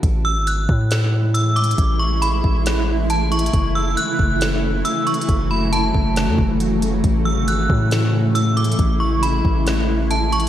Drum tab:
HH |x-----x-----x-----x--xxx|x-----x-----x-----x--xxx|x-----x-----x-----x--xxx|x-----x-----x-----x--x--|
SD |------------o-----------|------------o-----------|------------o-----------|------------o-----------|
BD |o--------o--------------|o--------o--------------|o--------o--------------|o--------o-----o--------|

HH |x-----x-----x-----x--xxx|x-----x-----x-----x--xx-|
SD |------------o-----------|------------o-----------|
BD |o--------o--------------|o--------o--------------|